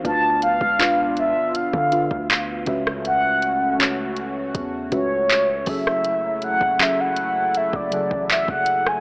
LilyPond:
<<
  \new Staff \with { instrumentName = "Soft synth lead" } { \time 4/4 \key a \major \tempo 4 = 80 a''8 f''4 e''8 f''4. r8 | fis''4 r4. cis''4 e''8~ | e''8 fis''8 e''16 fis''8. e''16 d''8. e''16 fis''8 gis''16 | }
  \new Staff \with { instrumentName = "FM electric piano" } { \time 4/4 \key a \major <d d' f' b' f''>4 <b, d' f' b' d''>4. <d d' f' b' f''>4 <cis cis' fis' b' e''>8~ | <cis cis' fis' b' e''>4 <cis cis' fis' b' cis''>4. <cis cis' fis' b' e''>4 <fis cis' gis' a' e''>8~ | <fis cis' gis' a' e''>4 <fis cis' gis' a' e''>4. <cis fis gis' a' fis''>4. | }
  \new Staff \with { instrumentName = "Analog synth pad" } { \time 4/4 \key a \major <b d' f'>2.~ <b d' f'>8 <a cis' fis'>8~ | <a cis' fis'>2.~ <a cis' fis'>8 <fis a e'>8~ | <fis a e'>1 | }
  \new Staff \with { instrumentName = "808-style bass" } { \clef bass \time 4/4 \key a \major d,8. cis,4 r8 d8 d,8. cis,8~ | cis,2 e,8 cis,4 fis,,8~ | fis,,8. fis,,4. fis,,8 a,,8 fis,,8. | }
  \new DrumStaff \with { instrumentName = "Drums" } \drummode { \time 4/4 <hh bd>8 hh16 bd16 <hc hh>8 hh8 hh16 bd16 hh16 bd16 <hc hh>8 <hh bd>16 ss16 | hh8 hh8 <hc hh>8 hh8 <hh bd>8 <hh bd>8 <hc hh>8 <hho bd>16 ss16 | hh8 hh16 bd16 <hc hh>8 hh8 hh16 bd16 hh16 bd16 <hc hh>16 bd16 hh16 ss16 | }
>>